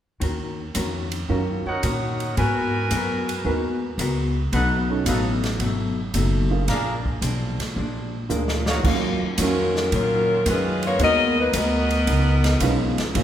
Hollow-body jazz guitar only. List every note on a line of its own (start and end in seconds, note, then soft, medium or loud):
0.20 0.60 D#3 soft
0.20 0.60 C#4 soft
0.20 0.61 F#4 soft
0.20 0.61 A#4 medium
0.75 1.14 D#3 medium
0.75 1.14 C#4 medium
0.75 1.15 F#4 medium
0.75 1.15 A#4 medium
1.29 1.68 D#3 soft
1.29 1.68 C#4 soft
1.29 1.69 F#4 soft
1.29 1.69 A#4 soft
1.82 2.22 D#3 medium
1.82 2.22 C#4 medium
1.82 2.22 F#4 medium
1.82 2.23 A#4 medium
2.37 2.76 G#3 soft
2.37 2.76 B3 soft
2.37 2.77 F#4 medium
2.37 2.77 A#4 medium
2.91 3.30 G#3 medium
2.91 3.30 B3 medium
2.91 3.31 F#4 medium
2.91 3.31 A#4 medium
3.45 3.83 G#3 soft
3.45 3.84 B3 medium
3.45 3.85 F#4 soft
3.45 3.85 A#4 soft
3.99 4.38 G#3 medium
3.99 4.38 B3 medium
3.99 4.39 F#4 medium
3.99 4.39 A#4 medium
4.53 4.92 B2 medium
4.53 4.92 F#3 soft
4.53 4.93 A3 soft
4.53 4.93 D#4 medium
5.06 5.45 B2 medium
5.06 5.46 F#3 medium
5.06 5.46 A3 medium
5.06 5.47 D#4 medium
5.60 5.99 B2 soft
5.60 6.00 F#3 soft
5.60 6.00 A3 medium
5.60 6.01 D#4 soft
6.14 6.53 B2 medium
6.14 6.54 F#3 medium
6.14 6.54 A3 medium
6.14 6.54 D#4 medium
6.68 7.07 A#2 soft
6.68 7.08 F3 soft
6.68 7.08 G#3 medium
6.68 7.09 D4 medium
7.22 7.61 A#2 medium
7.22 7.62 F3 medium
7.22 7.62 G#3 medium
7.22 7.62 D4 medium
7.76 8.15 A#2 soft
7.76 8.16 F3 soft
7.76 8.16 G#3 soft
7.76 8.17 D4 soft
8.30 8.69 A#2 medium
8.30 8.69 F3 medium
8.30 8.70 G#3 medium
8.30 8.70 D4 medium
8.83 9.23 D#3 medium
8.83 9.23 F#3 medium
8.83 9.24 C#4 medium
8.83 9.24 F4 medium
9.38 9.77 D#3 medium
9.38 9.77 F#3 medium
9.38 9.78 C#4 medium
9.38 9.78 F4 medium
9.92 10.31 D#3 soft
9.92 10.31 F#3 soft
9.92 10.32 C#4 soft
9.92 10.32 F4 soft
10.46 10.85 D#3 medium
10.46 10.85 F#3 medium
10.46 10.86 C#4 medium
10.46 10.86 F4 medium
10.99 11.38 G#3 soft
10.99 11.39 B3 soft
10.99 11.40 F#4 medium
10.99 11.40 A#4 medium
11.54 11.93 G#3 medium
11.54 11.93 B3 medium
11.54 11.93 F#4 medium
11.54 11.94 A#4 medium
12.07 12.46 C#3 soft
12.07 12.47 F3 soft
12.07 12.47 B3 soft
12.07 12.48 D#4 medium
12.61 13.00 C#3 medium
12.61 13.00 F3 medium
12.61 13.01 B3 medium
12.61 13.01 D#4 medium
13.14 13.23 F#2 medium
13.14 13.23 F3 medium
13.14 13.23 A#3 medium
13.14 13.23 C#4 medium